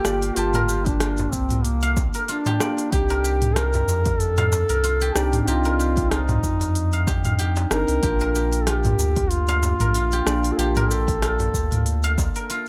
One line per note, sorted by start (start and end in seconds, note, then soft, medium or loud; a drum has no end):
0.00 1.00 F4 medium
0.00 0.36 G4 loud
0.00 0.38 G4 loud
0.00 0.54 A#4 medium
0.00 0.94 F5 loud
0.04 0.31 G1 medium
0.04 0.33 A#3 medium
0.04 0.34 F4 medium
0.04 0.34 G4 medium
0.04 1.90 D5 medium
0.04 cross-stick medium
0.04 darbuka ka soft
0.04 cabasa medium
0.22 open hi-hat soft
0.22 cabasa soft
0.35 1.28 G1 loud
0.35 2.56 A#3 medium
0.35 0.87 F4 loud
0.35 2.57 F4 medium
0.35 0.69 G4 loud
0.35 2.58 A5 medium
0.35 open hi-hat medium
0.35 cabasa soft
0.54 2.14 A#4 loud
0.54 mid tom medium
0.54 open hi-hat soft
0.54 darbuka ka medium
0.54 cabasa soft
0.69 2.46 G4 medium
0.69 cabasa medium
0.85 1.34 D4 loud
0.85 kick loud
0.85 open hi-hat soft
0.85 cabasa soft
1.00 2.28 F4 medium
1.00 cross-stick medium
1.00 open hi-hat medium
1.00 cabasa soft
1.18 open hi-hat soft
1.18 darbuka dum medium
1.18 cabasa soft
1.32 2.09 C2 loud
1.32 1.65 C4 loud
1.32 kick medium
1.32 darbuka ka medium
1.32 cabasa medium
1.50 mid tom medium
1.50 open hi-hat soft
1.50 cabasa soft
1.64 2.01 A#3 loud
1.64 open hi-hat medium
1.64 cabasa soft
1.83 3.49 F5 loud
1.83 open hi-hat soft
1.83 cabasa soft
1.97 kick loud
1.97 darbuka tek medium
1.97 cabasa medium
2.14 3.10 A#4 medium
2.14 open hi-hat soft
2.14 cabasa soft
2.28 2.93 D4 loud
2.28 3.56 F4 medium
2.28 open hi-hat medium
2.28 cabasa soft
2.46 2.92 G4 loud
2.46 mid tom medium
2.46 open hi-hat soft
2.46 darbuka tek medium
2.46 cabasa soft
2.59 2.88 A#3 medium
2.59 2.89 F4 medium
2.59 2.89 G4 medium
2.59 4.45 D5 medium
2.59 cross-stick medium
2.59 darbuka tek medium
2.59 cabasa medium
2.78 open hi-hat soft
2.78 cabasa soft
2.91 3.83 C2 loud
2.91 5.11 C4 medium
2.91 5.12 D4 medium
2.91 5.13 D#4 loud
2.91 3.57 G4 loud
2.91 3.24 G4 loud
2.91 kick loud
2.91 open hi-hat medium
2.91 cabasa soft
3.10 4.69 A#4 loud
3.10 open hi-hat soft
3.10 darbuka ka medium
3.10 cabasa soft
3.24 5.01 G4 medium
3.24 cabasa medium
3.42 mid tom medium
3.42 open hi-hat soft
3.42 cabasa soft
3.56 4.84 F4 medium
3.56 4.21 A#4 loud
3.56 cross-stick medium
3.56 open hi-hat medium
3.56 cabasa soft
3.74 open hi-hat soft
3.74 darbuka dum medium
3.74 cabasa soft
3.88 4.64 F2 loud
3.88 darbuka ka medium
3.88 darbuka tek soft
3.88 cabasa medium
4.06 kick loud
4.06 open hi-hat soft
4.06 darbuka dum medium
4.06 cabasa soft
4.19 5.16 A4 loud
4.19 open hi-hat medium
4.19 cabasa soft
4.38 6.04 F5 loud
4.38 mid tom medium
4.38 open hi-hat soft
4.38 darbuka tek medium
4.38 cabasa soft
4.52 darbuka ka soft
4.52 darbuka tek medium
4.52 darbuka dum medium
4.52 cabasa medium
4.69 5.11 C2 medium
4.69 5.65 A#4 medium
4.69 open hi-hat soft
4.69 cabasa soft
4.84 6.11 F4 medium
4.84 open hi-hat medium
4.84 cabasa soft
5.01 5.47 G4 loud
5.01 open hi-hat soft
5.01 cabasa soft
5.15 5.42 C2 medium
5.15 5.44 C4 medium
5.15 5.44 D4 medium
5.15 5.45 D#4 loud
5.15 5.41 G4 loud
5.15 7.00 D5 medium
5.15 cross-stick medium
5.15 cabasa medium
5.33 mid tom medium
5.33 open hi-hat soft
5.33 cabasa soft
5.42 5.48 G4 medium
5.46 6.39 C2 loud
5.46 7.67 C4 medium
5.46 6.12 F4 loud
5.46 5.79 G4 loud
5.46 7.68 D5 medium
5.46 open hi-hat medium
5.46 cabasa soft
5.50 7.69 D#4 medium
5.65 7.77 A#4 loud
5.65 open hi-hat soft
5.65 darbuka ka medium
5.65 cabasa soft
5.79 7.07 G4 medium
5.79 cabasa medium
5.97 kick loud
5.97 open hi-hat soft
5.97 cabasa soft
6.10 7.44 D#4 loud
6.10 8.64 F4 medium
6.10 cross-stick medium
6.10 open hi-hat medium
6.10 cabasa soft
6.29 mid tom medium
6.29 open hi-hat soft
6.29 darbuka dum medium
6.29 cabasa soft
6.43 7.07 F2 loud
6.43 kick medium
6.43 darbuka ka medium
6.43 cabasa medium
6.61 open hi-hat soft
6.61 darbuka dum medium
6.61 cabasa soft
6.75 open hi-hat medium
6.75 cabasa soft
6.93 7.25 F5 loud
6.93 open hi-hat soft
6.93 cabasa soft
7.07 7.66 F2 medium
7.07 7.39 G4 loud
7.07 kick loud
7.07 darbuka tek medium
7.07 cabasa medium
7.25 8.91 F5 medium
7.25 mid tom medium
7.25 open hi-hat soft
7.25 cabasa soft
7.39 8.03 G4 loud
7.39 open hi-hat soft
7.39 cabasa soft
7.56 open hi-hat soft
7.56 darbuka tek medium
7.56 cabasa soft
7.70 7.85 G1 loud
7.70 7.99 C4 medium
7.70 8.00 D4 medium
7.70 8.00 D#4 loud
7.70 8.63 A#4 loud
7.70 cross-stick medium
7.70 darbuka tek medium
7.70 cabasa medium
7.88 8.00 C2 medium
7.88 open hi-hat soft
7.88 cabasa soft
8.01 8.94 A#1 loud
8.01 10.22 A#3 medium
8.01 10.23 D4 medium
8.01 8.35 G4 loud
8.01 kick loud
8.01 open hi-hat medium
8.01 cabasa soft
8.05 10.24 F4 medium
8.21 9.80 A#4 loud
8.21 open hi-hat soft
8.21 darbuka ka medium
8.21 cabasa soft
8.35 10.12 G4 medium
8.35 cabasa medium
8.53 open hi-hat soft
8.53 cabasa soft
8.61 8.68 A4 medium
8.67 9.95 F4 medium
8.67 9.31 G4 loud
8.67 cross-stick medium
8.67 open hi-hat medium
8.67 cabasa soft
8.85 mid tom medium
8.85 open hi-hat soft
8.85 darbuka dum medium
8.85 cabasa soft
8.98 9.74 D2 loud
8.98 darbuka ka medium
8.98 darbuka tek soft
8.98 cabasa medium
9.16 kick loud
9.16 open hi-hat soft
9.16 darbuka dum medium
9.16 cabasa soft
9.30 10.54 F4 loud
9.30 open hi-hat medium
9.30 cabasa soft
9.48 11.15 F5 loud
9.48 open hi-hat soft
9.48 darbuka tek medium
9.48 cabasa soft
9.63 darbuka ka soft
9.63 darbuka tek medium
9.63 darbuka dum medium
9.63 cabasa medium
9.80 10.22 A#1 medium
9.80 10.76 A#4 medium
9.80 mid tom medium
9.80 open hi-hat soft
9.80 cabasa soft
9.94 11.22 F4 medium
9.94 open hi-hat medium
9.94 cabasa soft
10.12 10.59 G4 medium
10.12 open hi-hat soft
10.12 cabasa soft
10.26 10.52 A#1 medium
10.26 10.54 A#3 medium
10.26 10.55 D4 medium
10.26 10.56 F4 loud
10.26 12.12 D5 medium
10.26 cross-stick medium
10.26 darbuka ka soft
10.26 cabasa medium
10.44 open hi-hat soft
10.44 cabasa soft
10.52 10.59 A4 medium
10.57 11.49 A#1 loud
10.57 12.68 A#3 medium
10.57 12.68 D4 medium
10.57 10.91 G4 loud
10.57 10.90 G4 loud
10.57 open hi-hat medium
10.57 cabasa soft
10.61 12.68 F4 medium
10.76 12.35 A#4 loud
10.76 mid tom medium
10.76 open hi-hat soft
10.76 darbuka ka medium
10.76 cabasa soft
10.89 12.67 G4 medium
10.89 12.17 A4 loud
10.89 cabasa medium
11.08 kick loud
11.08 open hi-hat soft
11.08 cabasa soft
11.22 12.50 F4 medium
11.22 cross-stick medium
11.22 open hi-hat medium
11.22 cabasa soft
11.40 open hi-hat soft
11.40 darbuka dum medium
11.40 cabasa soft
11.54 12.30 D2 medium
11.54 kick medium
11.54 darbuka ka medium
11.54 cabasa medium
11.72 mid tom medium
11.72 open hi-hat soft
11.72 cabasa soft
11.86 open hi-hat medium
11.86 cabasa soft
12.04 12.68 F5 loud
12.04 open hi-hat soft
12.04 cabasa soft
12.18 kick loud
12.18 darbuka tek medium
12.18 cabasa medium
12.36 12.68 A#4 medium
12.36 open hi-hat soft
12.36 cabasa soft
12.50 12.68 F4 medium
12.50 open hi-hat medium
12.50 cabasa soft